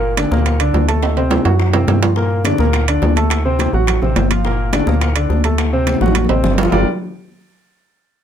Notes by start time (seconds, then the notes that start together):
Already playing: G1 A#2 A#3 A#4
0.03 high conga
0.17 D3 D4 D5, high bongo, high conga, high timbale
0.31 D2 A#2 A#3 A#4, high bongo, high conga
0.46 high bongo, high conga, high timbale
0.60 D3 D4 D5, high bongo, high conga, high timbale
0.74 D2, high bongo, low bongo, high conga, low timbale
0.88 A3 A4 A5, high conga, high timbale
1.03 high bongo, high conga, high timbale
1.16 C3 C4 C5, high conga, high timbale
1.31 high bongo, high conga, low timbale
1.45 F#2 F#3 F#4 F#5, high bongo, high conga, low timbale
1.60 high bongo, high conga, low conga
1.73 C3 C4 C5, high bongo, high conga, low conga, low timbale
1.88 G2, high bongo, low bongo, high conga, low timbale
2.02 F3 F4 F5, high conga, low timbale
2.16 A#2 A#3 A#4, high bongo, high conga
2.30 high conga
2.44 D3 D4 D5, high bongo, high conga, high timbale
2.58 D2 A#2 A#3 A#4, high bongo, high conga
2.73 high bongo, high conga, high timbale
2.88 D3 D4 D5, high bongo, high conga, high timbale
3.02 D2, high bongo, low bongo, high conga, low timbale
3.16 A3 A4 A5, high conga, high timbale
3.30 high bongo, high conga, high timbale
3.45 C3 C4 C5, high conga
3.59 high bongo, high conga, high timbale
3.73 A1 F#3 F#4 F#5, high bongo, high conga
3.87 high bongo, high conga, low conga, high timbale
4.02 A1 C3 C4 C5, high bongo, high conga, low conga
4.16 G1, high bongo, low bongo, high conga, high timbale, low timbale
4.30 F3 F4 F5, high conga, high timbale
4.45 A#2 A#3 A#4, high bongo, high conga
4.59 high conga
4.73 D3 D4 D5, high bongo, high conga, high timbale
4.87 D2 A#2 A#3 A#4, high bongo, high conga
5.01 high bongo, high conga, high timbale
5.15 D3 D4 D5, high bongo, high conga, high timbale
5.30 D2, high bongo, low bongo, high conga
5.44 A3 A4 A5, high conga, high timbale
5.58 high bongo, high conga, high timbale
5.73 C3 C4 C5, high conga
5.87 high bongo, high conga, high timbale
5.96 high conga
6.01 A1 F#3 F#4 F#5, high bongo
6.06 low conga
6.15 low bongo, high conga, high timbale
6.25 low conga
6.29 A1 C3 C4 C5, high timbale
6.43 G1, low bongo, low conga
6.53 low conga
6.58 F3 F4 F5, low bongo, low timbale
6.63 low conga
6.72 G1 G3 D4 F4 G4 A#4 D5, low bongo, low conga, low timbale